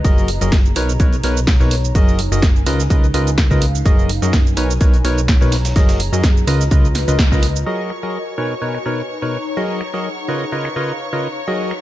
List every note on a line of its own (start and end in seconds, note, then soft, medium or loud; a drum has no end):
0.00 0.34 F4 medium
0.00 1.24 D#5 medium
0.00 2.24 A#5 medium
0.04 0.39 F#1 medium
0.04 0.30 F#3 loud
0.04 0.30 F#4 medium
0.04 0.30 G#4 medium
0.04 1.24 G#4 medium
0.04 0.30 A#4 medium
0.04 0.30 D#5 loud
0.04 kick loud
0.04 closed hi-hat medium
0.04 shaker medium
0.18 shaker soft
0.28 closed hi-hat medium
0.28 open hi-hat loud
0.41 0.74 F#1 loud
0.41 0.57 F#3 medium
0.41 0.57 F#4 medium
0.41 0.57 G#4 medium
0.41 0.57 A#4 medium
0.41 0.57 D#5 medium
0.41 closed hi-hat soft
0.41 shaker medium
0.52 kick loud
0.52 snare loud
0.52 closed hi-hat medium
0.52 shaker medium
0.66 shaker soft
0.76 0.98 B1 medium
0.76 0.93 B2 medium
0.76 6.05 D#4 medium
0.76 0.93 D#4 medium
0.76 0.93 A#4 medium
0.76 0.93 B4 medium
0.76 0.93 C#5 loud
0.76 closed hi-hat medium
0.76 open hi-hat loud
0.89 shaker medium
0.97 1.21 B1 loud
0.97 1.16 B2 medium
0.97 1.16 D#4 medium
0.97 1.16 A#4 medium
0.97 1.16 B4 medium
0.97 2.24 C#5 medium
0.97 1.16 C#5 medium
0.97 kick loud
0.97 closed hi-hat medium
0.97 shaker medium
1.13 closed hi-hat soft
1.13 shaker soft
1.24 1.58 B1 loud
1.24 1.40 B2 medium
1.24 1.40 D#4 medium
1.24 1.40 A#4 medium
1.24 1.40 B4 medium
1.24 1.40 C#5 loud
1.24 snare soft
1.24 closed hi-hat medium
1.24 open hi-hat loud
1.37 shaker medium
1.47 kick loud
1.47 snare loud
1.47 closed hi-hat medium
1.47 shaker medium
1.60 1.93 B1 loud
1.60 1.76 B2 medium
1.60 1.76 D#4 medium
1.60 1.76 A#4 medium
1.60 1.76 B4 medium
1.60 1.76 C#5 medium
1.60 snare medium
1.60 shaker soft
1.71 snare soft
1.71 closed hi-hat medium
1.71 open hi-hat loud
1.85 shaker medium
1.95 2.29 F#1 medium
1.95 2.21 F#3 loud
1.95 2.21 F#4 medium
1.95 2.21 G#4 medium
1.95 2.21 A#4 medium
1.95 2.21 D#5 loud
1.95 kick loud
1.95 closed hi-hat medium
1.95 shaker medium
2.08 shaker soft
2.19 closed hi-hat medium
2.19 open hi-hat loud
2.27 2.67 A#4 medium
2.27 3.14 G#5 medium
2.32 2.64 F#1 loud
2.32 2.47 F#3 medium
2.32 2.47 F#4 medium
2.32 2.47 G#4 medium
2.32 2.47 A#4 medium
2.32 2.47 D#5 medium
2.32 shaker medium
2.42 kick loud
2.42 snare loud
2.42 closed hi-hat medium
2.42 shaker medium
2.56 shaker soft
2.66 2.88 C#2 loud
2.66 2.83 C#3 medium
2.66 2.83 F4 medium
2.66 2.83 A#4 medium
2.66 2.83 B4 medium
2.66 2.83 D#5 medium
2.66 closed hi-hat medium
2.66 open hi-hat loud
2.79 snare soft
2.79 shaker medium
2.90 3.12 C#2 loud
2.90 3.07 C#3 medium
2.90 3.07 F4 medium
2.90 3.07 A#4 medium
2.90 3.07 B4 medium
2.90 3.07 D#5 medium
2.90 kick loud
2.90 closed hi-hat medium
2.90 shaker medium
2.99 3.85 B4 medium
2.99 4.15 F5 medium
3.04 shaker soft
3.14 3.48 C#2 medium
3.14 3.31 C#3 medium
3.14 3.31 F4 medium
3.14 3.31 A#4 medium
3.14 3.31 B4 medium
3.14 3.31 D#5 loud
3.14 closed hi-hat medium
3.14 open hi-hat loud
3.27 closed hi-hat soft
3.27 shaker medium
3.38 kick loud
3.38 snare loud
3.38 closed hi-hat medium
3.38 shaker medium
3.51 3.83 C#2 loud
3.51 3.66 C#3 medium
3.51 3.66 F4 medium
3.51 3.66 A#4 medium
3.51 3.66 B4 medium
3.51 3.66 D#5 loud
3.51 kick medium
3.51 snare soft
3.51 shaker soft
3.62 closed hi-hat medium
3.62 open hi-hat loud
3.75 shaker medium
3.86 4.20 F#1 medium
3.86 4.11 F#3 medium
3.86 4.11 F#4 medium
3.86 4.11 G#4 medium
3.86 4.11 A#4 medium
3.86 4.11 D#5 loud
3.86 kick loud
3.86 closed hi-hat medium
3.86 shaker medium
3.99 shaker soft
4.09 closed hi-hat medium
4.09 open hi-hat loud
4.18 4.55 F#2 loud
4.18 4.37 F#3 medium
4.18 4.37 F#4 medium
4.18 4.37 G#4 medium
4.18 5.05 A#4 medium
4.18 4.37 A#4 medium
4.18 4.37 D#5 medium
4.18 5.05 G#5 medium
4.18 closed hi-hat soft
4.23 shaker medium
4.33 kick loud
4.33 snare loud
4.33 closed hi-hat medium
4.33 shaker medium
4.47 shaker soft
4.57 4.79 B1 loud
4.57 4.73 B2 medium
4.57 4.73 D#4 medium
4.57 4.73 A#4 medium
4.57 4.73 B4 medium
4.57 4.73 C#5 medium
4.57 closed hi-hat medium
4.57 open hi-hat loud
4.71 shaker medium
4.81 5.02 B1 loud
4.81 4.97 B2 medium
4.81 4.97 D#4 medium
4.81 4.97 A#4 medium
4.81 4.97 B4 medium
4.81 4.97 C#5 medium
4.81 kick loud
4.81 closed hi-hat medium
4.81 shaker medium
4.94 6.05 C#5 medium
4.94 closed hi-hat soft
4.94 shaker soft
5.05 5.39 B1 loud
5.05 5.21 B2 medium
5.05 5.21 D#4 medium
5.05 5.21 A#4 medium
5.05 5.21 B4 medium
5.05 5.21 C#5 loud
5.05 snare soft
5.05 closed hi-hat medium
5.05 open hi-hat loud
5.11 7.95 A#5 medium
5.18 shaker medium
5.28 kick loud
5.28 snare loud
5.28 closed hi-hat medium
5.28 shaker medium
5.41 5.74 B1 loud
5.41 5.56 B2 medium
5.41 5.56 D#4 medium
5.41 5.56 A#4 medium
5.41 5.56 B4 medium
5.41 5.56 C#5 loud
5.41 snare medium
5.41 shaker soft
5.52 snare loud
5.52 closed hi-hat medium
5.52 open hi-hat loud
5.65 snare loud
5.65 closed hi-hat medium
5.65 shaker medium
5.76 6.10 F#1 medium
5.76 6.01 F#3 loud
5.76 6.01 F#4 medium
5.76 6.95 G#4 medium
5.76 6.01 G#4 medium
5.76 6.01 A#4 medium
5.76 6.01 D#5 loud
5.76 kick loud
5.76 snare loud
5.76 closed hi-hat medium
5.76 shaker medium
5.89 snare loud
5.89 closed hi-hat medium
5.89 shaker soft
6.00 closed hi-hat medium
6.00 open hi-hat loud
6.05 8.86 D#5 medium
6.13 6.45 F#2 loud
6.13 6.28 F#3 medium
6.13 6.28 F#4 medium
6.13 6.28 G#4 medium
6.13 6.28 A#4 medium
6.13 6.28 D#5 medium
6.13 shaker medium
6.23 kick loud
6.23 snare loud
6.23 closed hi-hat medium
6.23 shaker medium
6.37 shaker soft
6.47 6.69 C#2 loud
6.47 6.64 C#3 medium
6.47 7.66 F4 medium
6.47 6.64 F4 medium
6.47 6.64 A#4 medium
6.47 6.64 B4 medium
6.47 6.64 D#5 loud
6.47 closed hi-hat medium
6.47 open hi-hat loud
6.57 7.66 B4 medium
6.57 snare soft
6.61 shaker medium
6.71 7.05 C#2 loud
6.71 6.88 C#3 medium
6.71 6.88 F4 medium
6.71 6.88 A#4 medium
6.71 6.88 B4 medium
6.71 6.88 D#5 medium
6.71 kick loud
6.71 closed hi-hat medium
6.71 shaker medium
6.85 shaker soft
6.95 snare medium
6.95 closed hi-hat medium
6.95 open hi-hat loud
7.08 7.29 C#2 medium
7.08 7.23 C#3 medium
7.08 7.23 F4 medium
7.08 7.23 A#4 medium
7.08 7.23 B4 medium
7.08 7.23 D#5 medium
7.08 closed hi-hat soft
7.08 shaker medium
7.19 kick loud
7.19 snare loud
7.19 closed hi-hat medium
7.19 shaker medium
7.32 7.64 C#2 medium
7.32 7.47 C#3 medium
7.32 7.47 F4 medium
7.32 7.47 A#4 medium
7.32 7.47 B4 medium
7.32 7.47 D#5 medium
7.32 kick medium
7.32 snare soft
7.32 shaker soft
7.43 closed hi-hat medium
7.43 open hi-hat loud
7.56 shaker medium
7.66 7.92 F#3 loud
7.66 7.92 F#4 medium
7.66 8.86 F#4 medium
7.66 7.92 G#4 medium
7.66 7.92 A#4 medium
7.66 11.81 C#5 medium
7.66 7.92 D#5 loud
7.66 11.81 C#6 medium
7.76 8.38 A#4 medium
7.90 8.86 G#5 medium
7.90 finger snap medium
8.03 8.18 F#3 medium
8.03 8.18 F#4 medium
8.03 8.18 G#4 medium
8.03 8.18 A#4 medium
8.03 8.18 D#5 medium
8.38 8.54 B2 medium
8.38 11.81 D#4 medium
8.38 8.54 D#4 medium
8.38 8.54 A#4 medium
8.38 8.54 B4 medium
8.38 8.54 C#5 loud
8.60 8.78 B2 medium
8.60 8.78 D#4 medium
8.60 8.78 A#4 medium
8.60 9.57 B4 medium
8.60 8.78 B4 medium
8.60 8.78 C#5 medium
8.75 finger snap medium
8.86 9.02 B2 medium
8.86 9.02 D#4 medium
8.86 9.02 A#4 medium
8.86 9.02 B4 medium
8.86 9.02 C#5 loud
8.92 9.86 C#5 medium
8.92 11.81 A#5 medium
9.22 9.37 B2 medium
9.22 9.37 D#4 medium
9.22 9.37 A#4 medium
9.22 9.37 B4 medium
9.22 9.37 C#5 medium
9.57 9.82 F#3 loud
9.57 9.82 F#4 medium
9.57 9.82 G#4 medium
9.57 9.82 A#4 medium
9.57 9.82 D#5 loud
9.79 10.76 G#4 medium
9.79 finger snap medium
9.90 10.09 F#3 medium
9.90 10.09 F#4 medium
9.90 10.09 G#4 medium
9.90 10.09 A#4 medium
9.90 10.09 D#5 medium
9.90 10.29 F#5 medium
10.28 10.45 C#3 medium
10.28 10.45 F4 medium
10.28 10.45 A#4 medium
10.28 10.45 B4 medium
10.28 10.45 C#5 medium
10.28 10.45 D#5 medium
10.34 11.48 B4 medium
10.52 10.69 C#3 medium
10.52 10.69 F4 medium
10.52 10.69 A#4 medium
10.52 10.69 B4 medium
10.52 10.69 C#5 medium
10.52 10.69 D#5 medium
10.52 11.48 F5 medium
10.65 11.77 C#5 medium
10.65 finger snap medium
10.76 10.93 C#3 medium
10.76 10.93 F4 medium
10.76 10.93 A#4 medium
10.76 10.93 B4 medium
10.76 10.93 C#5 medium
10.76 10.93 D#5 loud
11.13 11.28 C#3 medium
11.13 11.28 F4 medium
11.13 11.28 A#4 medium
11.13 11.28 B4 medium
11.13 11.28 C#5 medium
11.13 11.28 D#5 medium
11.48 11.73 F#3 loud
11.48 11.73 F#4 medium
11.48 11.73 G#4 medium
11.48 11.73 A#4 medium
11.48 11.73 D#5 loud
11.66 11.81 G#4 medium
11.71 11.81 F#5 medium
11.71 finger snap medium